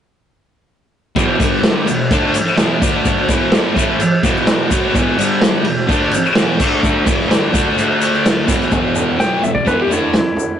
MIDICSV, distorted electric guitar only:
0, 0, Header, 1, 3, 480
1, 0, Start_track
1, 0, Tempo, 471698
1, 1197, Time_signature, 4, 2, 24, 8
1, 10781, End_track
2, 0, Start_track
2, 0, Title_t, "Distorted electric guitar"
2, 0, Program_c, 0, 30
2, 1174, Note_on_c, 0, 40, 92
2, 1185, Note_on_c, 0, 47, 103
2, 1192, Note_on_c, 0, 52, 102
2, 1416, Note_off_c, 0, 40, 0
2, 1421, Note_on_c, 0, 43, 99
2, 1423, Note_off_c, 0, 47, 0
2, 1427, Note_off_c, 0, 52, 0
2, 1427, Note_on_c, 0, 50, 106
2, 1431, Note_on_c, 0, 55, 115
2, 1901, Note_off_c, 0, 43, 0
2, 1904, Note_off_c, 0, 50, 0
2, 1906, Note_off_c, 0, 55, 0
2, 1908, Note_on_c, 0, 40, 70
2, 1912, Note_on_c, 0, 47, 77
2, 2104, Note_off_c, 0, 40, 0
2, 2106, Note_off_c, 0, 47, 0
2, 2151, Note_on_c, 0, 50, 100
2, 2160, Note_on_c, 0, 57, 99
2, 2164, Note_on_c, 0, 62, 98
2, 2386, Note_off_c, 0, 50, 0
2, 2391, Note_off_c, 0, 57, 0
2, 2393, Note_off_c, 0, 62, 0
2, 2618, Note_on_c, 0, 40, 95
2, 2637, Note_on_c, 0, 47, 104
2, 2637, Note_on_c, 0, 52, 117
2, 2860, Note_off_c, 0, 40, 0
2, 2864, Note_off_c, 0, 47, 0
2, 2868, Note_on_c, 0, 50, 101
2, 2869, Note_off_c, 0, 52, 0
2, 2879, Note_on_c, 0, 57, 92
2, 2890, Note_on_c, 0, 62, 98
2, 3344, Note_off_c, 0, 50, 0
2, 3350, Note_off_c, 0, 57, 0
2, 3352, Note_on_c, 0, 40, 92
2, 3355, Note_off_c, 0, 62, 0
2, 3360, Note_on_c, 0, 47, 101
2, 3367, Note_on_c, 0, 52, 104
2, 3585, Note_off_c, 0, 40, 0
2, 3589, Note_on_c, 0, 43, 86
2, 3590, Note_off_c, 0, 47, 0
2, 3594, Note_off_c, 0, 52, 0
2, 3595, Note_on_c, 0, 50, 101
2, 3602, Note_on_c, 0, 55, 100
2, 3811, Note_off_c, 0, 50, 0
2, 3815, Note_on_c, 0, 45, 95
2, 3818, Note_off_c, 0, 55, 0
2, 3822, Note_on_c, 0, 52, 97
2, 3825, Note_off_c, 0, 43, 0
2, 3835, Note_on_c, 0, 57, 97
2, 4058, Note_off_c, 0, 45, 0
2, 4061, Note_off_c, 0, 52, 0
2, 4068, Note_off_c, 0, 57, 0
2, 4306, Note_on_c, 0, 40, 100
2, 4311, Note_on_c, 0, 47, 98
2, 4322, Note_on_c, 0, 52, 90
2, 4771, Note_off_c, 0, 47, 0
2, 4783, Note_off_c, 0, 40, 0
2, 4783, Note_on_c, 0, 47, 92
2, 4787, Note_off_c, 0, 52, 0
2, 4791, Note_on_c, 0, 54, 104
2, 4798, Note_on_c, 0, 59, 107
2, 5022, Note_off_c, 0, 47, 0
2, 5026, Note_off_c, 0, 54, 0
2, 5029, Note_off_c, 0, 59, 0
2, 5029, Note_on_c, 0, 40, 92
2, 5037, Note_on_c, 0, 47, 103
2, 5044, Note_on_c, 0, 52, 115
2, 5258, Note_off_c, 0, 40, 0
2, 5262, Note_on_c, 0, 43, 106
2, 5266, Note_off_c, 0, 47, 0
2, 5271, Note_on_c, 0, 50, 107
2, 5272, Note_off_c, 0, 52, 0
2, 5282, Note_on_c, 0, 55, 118
2, 5741, Note_off_c, 0, 43, 0
2, 5745, Note_off_c, 0, 50, 0
2, 5751, Note_off_c, 0, 55, 0
2, 5757, Note_on_c, 0, 40, 62
2, 5760, Note_on_c, 0, 47, 80
2, 5948, Note_off_c, 0, 40, 0
2, 5949, Note_off_c, 0, 47, 0
2, 5977, Note_on_c, 0, 50, 101
2, 5988, Note_on_c, 0, 62, 107
2, 5990, Note_on_c, 0, 57, 98
2, 6218, Note_off_c, 0, 50, 0
2, 6224, Note_off_c, 0, 62, 0
2, 6225, Note_off_c, 0, 57, 0
2, 6467, Note_on_c, 0, 40, 103
2, 6473, Note_on_c, 0, 47, 108
2, 6480, Note_on_c, 0, 52, 120
2, 6701, Note_off_c, 0, 47, 0
2, 6703, Note_off_c, 0, 40, 0
2, 6705, Note_on_c, 0, 50, 94
2, 6710, Note_off_c, 0, 52, 0
2, 6716, Note_on_c, 0, 57, 99
2, 6716, Note_on_c, 0, 62, 106
2, 7180, Note_off_c, 0, 50, 0
2, 7182, Note_on_c, 0, 40, 93
2, 7185, Note_on_c, 0, 47, 105
2, 7188, Note_off_c, 0, 57, 0
2, 7188, Note_off_c, 0, 62, 0
2, 7197, Note_on_c, 0, 52, 116
2, 7408, Note_off_c, 0, 40, 0
2, 7412, Note_on_c, 0, 43, 88
2, 7417, Note_off_c, 0, 47, 0
2, 7421, Note_on_c, 0, 50, 98
2, 7427, Note_off_c, 0, 52, 0
2, 7431, Note_on_c, 0, 55, 98
2, 7654, Note_off_c, 0, 50, 0
2, 7656, Note_off_c, 0, 43, 0
2, 7664, Note_off_c, 0, 55, 0
2, 7666, Note_on_c, 0, 50, 94
2, 7668, Note_on_c, 0, 57, 95
2, 7682, Note_on_c, 0, 62, 96
2, 8613, Note_on_c, 0, 40, 101
2, 8617, Note_off_c, 0, 50, 0
2, 8621, Note_on_c, 0, 47, 93
2, 8624, Note_off_c, 0, 57, 0
2, 8629, Note_on_c, 0, 52, 102
2, 8632, Note_off_c, 0, 62, 0
2, 8849, Note_off_c, 0, 40, 0
2, 8861, Note_off_c, 0, 47, 0
2, 8862, Note_on_c, 0, 40, 82
2, 8865, Note_off_c, 0, 52, 0
2, 8878, Note_on_c, 0, 47, 96
2, 8878, Note_on_c, 0, 52, 97
2, 9332, Note_off_c, 0, 47, 0
2, 9343, Note_off_c, 0, 40, 0
2, 9343, Note_off_c, 0, 52, 0
2, 9344, Note_on_c, 0, 47, 75
2, 9347, Note_on_c, 0, 54, 93
2, 9359, Note_on_c, 0, 59, 92
2, 9572, Note_off_c, 0, 47, 0
2, 9580, Note_on_c, 0, 40, 62
2, 9584, Note_on_c, 0, 47, 74
2, 9586, Note_off_c, 0, 54, 0
2, 9591, Note_off_c, 0, 59, 0
2, 9782, Note_off_c, 0, 40, 0
2, 9784, Note_off_c, 0, 47, 0
2, 9816, Note_on_c, 0, 40, 90
2, 9820, Note_on_c, 0, 47, 97
2, 9825, Note_on_c, 0, 52, 108
2, 10058, Note_off_c, 0, 47, 0
2, 10061, Note_off_c, 0, 40, 0
2, 10062, Note_on_c, 0, 50, 90
2, 10065, Note_off_c, 0, 52, 0
2, 10069, Note_on_c, 0, 57, 91
2, 10073, Note_on_c, 0, 62, 97
2, 10304, Note_off_c, 0, 50, 0
2, 10307, Note_off_c, 0, 57, 0
2, 10310, Note_off_c, 0, 62, 0
2, 10781, End_track
3, 0, Start_track
3, 0, Title_t, "Muted distorted electric guitar strokes"
3, 2393, Note_on_c, 9, 29, 60
3, 2495, Note_off_c, 9, 29, 0
3, 4056, Note_on_c, 9, 29, 65
3, 4157, Note_off_c, 9, 29, 0
3, 6230, Note_on_c, 9, 29, 60
3, 6332, Note_off_c, 9, 29, 0
3, 10781, End_track
0, 0, End_of_file